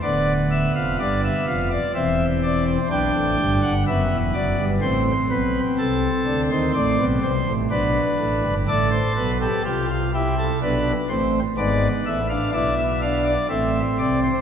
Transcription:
<<
  \new Staff \with { instrumentName = "Pipe organ" } { \time 3/4 \key g \mixolydian \tempo 4 = 62 << { d''8 e''16 f''16 d''16 e''16 f''16 d''16 e''8 d''16 c''16 | g''8. fis''16 e''8 d''8 c''8 b'8 | a'8. c''16 d''8 c''8 b'4 | \key a \minor d''16 c''16 b'16 a'16 g'16 f'16 g'16 a'16 b'8 c''8 |
d''8 e''16 eis''16 d''16 e''16 eis''16 d''16 e''8 d''16 c''16 | } \\ { b2 c'4 | d'4 b4 c'4~ | c'2 d'4 | a'8. g'16 f'8 e'8 d'8 c'8 |
b8. d'16 e'8 d'8 c'4 | } >> }
  \new Staff \with { instrumentName = "Pipe organ" } { \clef bass \time 3/4 \key g \mixolydian <d,, d,>8. <f,, f,>16 <g,, g,>8 <f,, f,>8 <e,, e,>4 | <b,, b,>16 <a,, a,>16 <g,, g,>16 <g,, g,>16 <fis,, fis,>16 <e,, e,>16 <fis,, fis,>16 <g,, g,>16 <a,, a,>8 <b,, b,>8 | <c, c>8 <d, d>16 <ees, ees>16 <a,, a,>16 <b,, b,>16 <c, c>16 <a,, a,>16 <b,, b,>8 <a,, a,>16 <g,, g,>16 | \key a \minor <a,, a,>8 <b,, b,>8 <c, c>4 <b,, b,>8 <a,, a,>8 |
<gis,, gis,>8 <a,, a,>8 <b,, b,>4 <a,, a,>8 <c, c>8 | }
>>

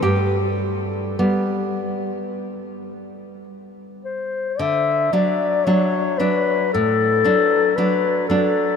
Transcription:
<<
  \new Staff \with { instrumentName = "Clarinet" } { \time 4/4 \key g \major \tempo 4 = 56 r2. r8 c''8 | \key d \major e''8 d''8 cis''8 b'8 a'4 b'8 a'8 | }
  \new Staff \with { instrumentName = "Nylon-string guitar" } { \clef bass \time 4/4 \key g \major << { g'2. r4 | \key d \major r1 | } \\ { g,4 <g b>2. | d8 <fis d'>8 <fis d'>8 <fis d'>8 a,8 <fis d'>8 <fis d'>8 <fis d'>8 | } >> }
>>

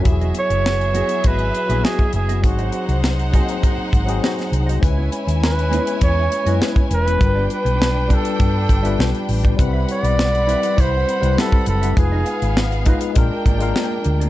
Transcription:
<<
  \new Staff \with { instrumentName = "Flugelhorn" } { \time 4/4 \key e \lydian \tempo 4 = 101 r8 cis''4. b'4 gis'8 gis'8 | fis'4 r2. | r4 b'4 cis''4 r8 b'8~ | b'8 b'4 a'2 r8 |
r8 d''4. c''4 a'8 a'8 | aes'4 r2. | }
  \new Staff \with { instrumentName = "Violin section" } { \time 4/4 \key e \lydian <b gis' e''>1 | <dis' bis' fis''>1 | <e' cis'' gis''>1 | <d' b' g''>1 |
<c' fis'' b''>1 | <ces' aes' f''>2 <d' ais' g''>2 | }
  \new Staff \with { instrumentName = "Clean electric guitar" } { \time 4/4 \key e \lydian r16 <b fis' gis' dis''>16 r4 <b fis' gis' dis''>16 r16 <b fis' gis' dis''>16 r8 <b fis' gis' e''>16 <b fis' gis' dis''>16 r8 <b fis' gis' dis''>16 | r16 <dis' fis' bis' dis''>16 r4 <dis' fis' bis' dis''>16 r16 <dis' fis' bis' dis''>16 r8 <dis' fis' bis' fis''>16 <dis' fis' bis' dis''>16 r8 <dis' fis' bis' dis''>16 | r16 <b e' gis' cis''>16 r4 <b e' gis' cis''>16 r16 <b e' gis' cis''>16 r8 <b e' gis' dis''>16 <b e' gis' cis''>16 r8 <b e' gis' cis''>16 | r16 <b f' g' d''>16 r4 <b f' g' d''>16 r16 <b f' g' d''>16 r8 <b f' g' e''>16 <b f' g' d''>16 r8 <b f' g' d''>16 |
r16 <e' g' b' e''>16 r4 <e' g' b' e''>16 r16 <e' g' b' e''>16 r8 <e' g' b' fis''>16 <e' g' b' e''>16 r8 <e' g' b' e''>16 | r16 <ees' aes' ces'' ees''>16 r4 <ees' aes' ces'' ees''>16 r8. <ais eis' gis' d''>16 <ais eis' gis' eis''>16 <ais eis' gis' d''>16 r8 <ais eis' gis' d''>16 | }
  \new Staff \with { instrumentName = "Tine electric piano" } { \time 4/4 \key e \lydian <fis e' fis' g' gis'>4 r8 <fis e' fis' gis'>8. r8 <fis e' fis' gis'>8. r8 | <fis bis dis' gis'>4 r8 <fis ais bis dis' gis'>8. r8 <fis bis dis' gis'>8. r8 | <gis cis' e' b'>4 r8 <gis cis' e' b'>8. r8 <gis cis' e' b'>8. r8 | <g d' f' ais' b'>4 r8 <g d' f' b'>8. r8 <g d' f' b'>8. r8 |
<g c' e' b'>4 r8 <g c' e' b'>8. r8 <g c' e' b'>8. r8 | <aes ees' f' ces''>4 r8 <aes ees' f' ces''>8 <gis d' eis' ais'>8 r16 <gis d' eis' ais'>8. r8 | }
  \new Staff \with { instrumentName = "Fingered electric bass" } { \clef bass \time 4/4 \key e \lydian e,,8 r16 fis,,4 r16 gis,,8 r16 ais,,16 r8 fis,,8 | gis,,8 r16 bis,,4 r8. gis,,8 r8 bis,,8 | cis,8 r16 dis,4 r16 e,8 r16 fis,16 r8 e,,8 | g,,8 r16 b,,4 r16 g,8 g,,8 b,,16 r16 a,,8 |
c,8 r16 b,,4 r16 c,8 r16 c,16 r8 fis,,8 | f,,8 r16 aes,,4 r16 ais,,16 r16 gis,,8 r8 d,8 | }
  \new DrumStaff \with { instrumentName = "Drums" } \drummode { \time 4/4 <hh bd>16 hh16 hh16 hh16 sn16 hh16 hh16 hh16 <hh bd>16 hh16 hh16 hh16 sn16 <hh bd>16 hh16 hh16 | <hh bd>16 hh16 hh16 hh16 sn16 hh16 <hh bd>16 hh16 <hh bd>8 <hh bd>16 hh16 sn16 <hh sn>16 hh16 hh16 | <hh bd>8 hh16 hh16 sn16 hh16 hh16 hh16 <hh bd>8 hh16 hh16 sn16 <hh bd>16 hh16 hh16 | <hh bd>8 hh16 hh16 sn8 <hh bd>16 hh16 <hh bd>8 <hh bd>16 hh16 sn16 hh16 hho16 <hh bd>16 |
<hh bd>8 hh16 hh16 sn16 hh16 hh16 hh16 <hh bd>8 hh16 hh16 sn16 bd16 hh16 hh16 | <hh bd>8 hh16 hh16 sn16 hh16 <hh bd>16 hh16 <hh bd>8 <hh bd>16 hh16 sn8 hh16 hh16 | }
>>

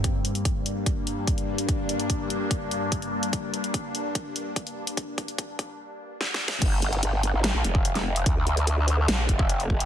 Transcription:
<<
  \new Staff \with { instrumentName = "Ambient pad" } { \clef bass \time 4/4 \key g \minor \tempo 4 = 146 <g, g bes d'>1~ | <g, g bes d'>1~ | <g, g bes d'>1~ | <g, g bes d'>1 |
r1 | r1 | }
  \new Staff \with { instrumentName = "Wobble bass" } { \clef bass \time 4/4 \key g \minor r1 | r1 | r1 | r1 |
g,,8 g,,8 g,,8. aes,,8 bes,,16 f,,4. | d,2 bes,,8 f,,4. | }
  \new DrumStaff \with { instrumentName = "Drums" } \drummode { \time 4/4 <hh bd>8 hh16 hh16 <hh bd>8 hh8 <hh bd>8 hh8 <hh bd>16 hh8 hh16 | <hh bd>8 hh16 hh16 <hh bd>8 hh8 <hh bd>8 hh8 <hh bd>16 hh8 hh16 | <hh bd>8 hh16 hh16 <hh bd>8 hh8 <hh bd>8 hh8 <hh bd>16 hh8 hh16 | <hh bd>8 <hh bd>16 hh16 <hh bd>8 <hh bd>8 r4 \tuplet 3/2 { sn8 sn8 sn8 } |
<cymc hh bd>8 hh16 hh16 hh8 hh8 <hh sn>8 hh16 bd16 hh16 <hh sn>8 hh16 | <hh bd>8 hh16 hh16 hh8 hh8 <hh sn>8 <hh bd>16 bd16 hh16 hh16 bd16 hh16 | }
>>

